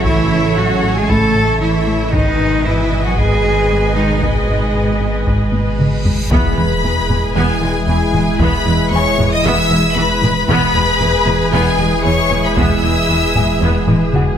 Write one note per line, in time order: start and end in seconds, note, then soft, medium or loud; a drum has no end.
0.00 2.10 A1 medium
0.00 2.16 A1 medium
0.00 2.10 C#3 medium
0.00 2.14 A3 medium
0.00 2.10 C#4 medium
0.00 2.09 A4 medium
0.00 2.14 A4 medium
0.00 2.09 C#5 medium
0.00 2.10 E5 medium
0.04 0.20 A2 medium
0.04 0.56 E3 medium
0.04 0.59 E4 loud
0.04 0.57 E4 medium
0.04 0.56 E5 medium
0.04 taiko loud
0.32 0.47 A2 medium
0.57 0.73 A2 medium
0.57 0.96 F#3 medium
0.57 0.96 F#4 medium
0.57 0.99 F#4 medium
0.57 0.96 F#5 medium
0.83 0.99 A2 medium
0.96 1.09 G#3 medium
0.96 1.09 G#4 medium
0.96 1.11 G#4 medium
0.96 1.09 G#5 medium
1.08 1.25 A2 medium
1.08 1.61 A3 medium
1.08 1.61 A4 medium
1.08 1.60 A4 loud
1.08 1.61 A5 medium
1.08 2.62 B5 medium
1.08 taiko medium
1.35 1.51 A2 medium
1.59 1.77 A2 medium
1.59 2.12 E3 medium
1.59 2.11 E4 medium
1.59 2.15 E4 medium
1.59 2.13 E5 medium
1.87 2.03 A3 medium
2.12 6.11 G#1 medium
2.12 6.30 G#1 medium
2.12 2.29 G#2 medium
2.12 6.30 B2 medium
2.12 2.65 D#3 medium
2.12 6.31 G#3 medium
2.12 2.67 D#4 medium
2.12 2.66 D#4 medium
2.12 6.30 G#4 medium
2.12 6.31 B4 medium
2.12 6.07 B4 medium
2.12 2.66 D#5 medium
2.12 6.12 D#5 medium
2.12 6.11 G#5 medium
2.12 taiko medium
2.39 2.55 G#2 medium
2.65 2.82 G#2 medium
2.65 3.05 E3 medium
2.65 3.05 E4 medium
2.65 3.04 E4 medium
2.65 3.05 E5 medium
2.92 3.08 G#2 medium
3.04 3.18 F#3 medium
3.04 3.17 F#4 medium
3.04 3.19 F#4 medium
3.04 3.18 F#5 medium
3.17 3.34 G#2 medium
3.17 3.96 G#3 medium
3.17 3.94 G#4 loud
3.17 3.95 G#4 medium
3.17 3.96 G#5 medium
3.17 taiko medium
3.45 3.60 G#2 medium
3.70 3.86 G#2 medium
3.95 4.22 D#3 medium
3.95 4.12 G#3 medium
3.95 4.23 D#4 medium
3.95 4.22 D#4 medium
3.95 4.22 D#5 medium
4.22 5.76 G#2 medium
4.22 4.38 G#2 medium
4.22 5.79 G#3 medium
4.22 5.76 G#4 medium
4.22 taiko medium
4.22 reverse cymbal medium
4.48 4.64 G#2 medium
4.48 6.02 D#4 soft
4.48 6.02 D#5 soft
4.74 4.90 G#2 medium
5.00 5.16 G#2 medium
5.26 5.42 G#2 medium
5.26 taiko medium
5.53 5.69 G#2 medium
5.53 taiko high medium
5.79 5.95 G#2 medium
5.79 taiko mid medium
6.05 6.21 G#3 medium
6.05 taiko low medium
6.31 10.44 E1 medium
6.31 6.39 E1 medium
6.31 6.39 E2 medium
6.31 6.48 E2 loud
6.31 10.44 E3 medium
6.31 10.44 G#3 medium
6.31 10.45 G#3 medium
6.31 6.56 B3 medium
6.31 10.44 E4 medium
6.31 10.45 E4 medium
6.31 7.84 E4 soft
6.31 10.45 G#4 medium
6.31 7.31 B4 medium
6.31 10.45 B4 medium
6.31 7.84 E5 soft
6.31 7.31 B5 loud
6.31 taiko loud
6.31 impact medium
6.57 6.66 E1 medium
6.57 6.65 E2 medium
6.57 6.74 E2 medium
6.57 6.66 G#3 soft
6.84 6.92 E1 medium
6.84 6.92 E2 medium
6.84 7.00 E2 medium
6.84 6.92 E3 soft
7.09 7.19 E1 medium
7.09 7.25 E2 medium
7.09 7.18 E2 medium
7.09 7.18 G#3 medium
7.09 taiko low-mid medium
7.35 7.44 E1 medium
7.35 7.51 E2 loud
7.35 7.44 E2 medium
7.35 7.60 B3 medium
7.35 7.87 G#4 medium
7.35 7.87 G#5 loud
7.61 7.71 E1 medium
7.61 7.70 E2 medium
7.61 7.77 E3 medium
7.61 7.70 G#3 medium
7.87 7.96 E1 medium
7.87 8.02 E2 medium
7.87 7.96 E2 medium
7.87 7.97 E3 medium
7.87 8.39 G#4 medium
7.87 8.39 G#5 medium
8.14 8.23 E1 medium
8.14 8.22 E2 medium
8.14 8.29 E3 medium
8.14 8.23 G#3 medium
8.14 taiko low-mid medium
8.39 8.48 E1 medium
8.39 8.55 E2 loud
8.39 8.48 E2 medium
8.39 8.65 B3 medium
8.39 8.92 B4 medium
8.39 8.91 B5 loud
8.39 taiko loud
8.65 8.74 E1 medium
8.65 8.81 E2 medium
8.65 8.74 E2 medium
8.65 8.75 G#3 soft
8.91 9.00 E1 medium
8.91 9.07 E2 medium
8.91 9.00 E2 medium
8.91 9.03 E3 medium
8.91 9.31 C#5 loud
8.91 9.30 C#6 loud
8.95 10.46 G#5 medium
9.18 9.27 E1 medium
9.18 9.26 E2 medium
9.18 9.34 E2 medium
9.18 9.28 G#3 medium
9.18 taiko low-mid medium
9.31 9.44 D#5 loud
9.31 9.44 D#6 loud
9.43 9.53 E1 loud
9.43 9.53 E2 loud
9.43 9.60 E2 loud
9.43 9.69 B3 medium
9.43 9.97 E5 loud
9.43 9.96 E6 loud
9.70 9.78 E1 medium
9.70 9.79 E2 medium
9.70 9.86 E3 medium
9.70 9.80 G#3 medium
9.95 10.05 E1 medium
9.95 10.12 E2 medium
9.95 10.04 E2 medium
9.95 10.05 E3 medium
9.95 10.47 B4 loud
9.95 10.47 B5 loud
10.22 10.31 E1 medium
10.22 10.31 E2 medium
10.22 10.38 E3 medium
10.22 10.32 G#3 medium
10.22 taiko low-mid medium
10.47 14.38 E1 medium
10.47 10.57 E1 loud
10.47 10.64 E2 loud
10.47 10.57 E2 loud
10.47 14.38 E3 medium
10.47 14.38 G#3 medium
10.47 14.36 G#3 medium
10.47 10.74 B3 loud
10.47 14.38 E4 medium
10.47 14.36 E4 medium
10.47 14.38 G#4 loud
10.47 14.38 B4 medium
10.47 11.50 B4 loud
10.47 11.51 B5 loud
10.47 taiko loud
10.75 10.83 E1 medium
10.75 10.83 E2 medium
10.75 10.90 E2 medium
10.75 10.84 G#3 medium
11.00 11.09 E1 medium
11.00 11.16 E2 medium
11.00 11.09 E2 medium
11.00 11.08 E3 medium
11.27 11.35 E1 medium
11.27 11.35 E2 medium
11.27 11.43 E2 medium
11.27 11.35 G#3 medium
11.27 taiko low-mid medium
11.52 11.61 E1 medium
11.52 11.61 E2 medium
11.52 11.69 E2 loud
11.52 11.77 B3 medium
11.52 12.05 G#4 loud
11.52 13.05 B4 medium
11.52 12.04 G#5 loud
11.52 13.06 B5 medium
11.79 11.87 E1 medium
11.79 11.87 E2 medium
11.79 11.95 E3 medium
11.79 11.88 G#3 medium
12.04 12.13 E1 medium
12.04 12.20 E2 medium
12.04 12.13 E2 medium
12.04 12.13 E3 medium
12.04 12.44 C#5 loud
12.04 12.43 C#6 loud
12.30 12.39 E1 medium
12.30 12.39 E2 medium
12.30 12.46 E3 medium
12.30 12.38 G#3 medium
12.30 taiko low-mid medium
12.44 12.57 B4 medium
12.44 12.58 B5 medium
12.57 12.65 E1 medium
12.57 12.73 E2 loud
12.57 12.65 E2 medium
12.57 12.81 B3 medium
12.57 14.11 E5 medium
12.57 14.14 E6 loud
12.57 taiko loud
12.83 12.91 E1 medium
12.83 12.99 E2 medium
12.83 12.92 E2 medium
12.83 12.92 G#3 medium
13.09 13.18 E1 medium
13.09 13.25 E2 medium
13.09 13.17 E2 medium
13.09 13.18 E3 medium
13.35 13.43 E1 medium
13.35 13.43 E2 medium
13.35 13.51 E2 medium
13.35 13.44 G#3 medium
13.35 14.38 G#5 medium
13.35 taiko low-mid medium
13.61 13.69 E1 medium
13.61 13.77 E2 medium
13.61 13.69 E2 medium
13.61 13.86 B3 medium
13.87 13.96 E1 medium
13.87 13.96 E2 medium
13.87 14.03 E3 medium
13.87 13.95 G#3 medium
13.87 taiko low-mid medium
14.13 14.22 E1 medium
14.13 14.21 E2 medium
14.13 14.29 E2 medium
14.13 14.22 E3 medium
14.13 14.38 F#4 soft
14.13 14.38 F#5 medium
14.13 taiko mid medium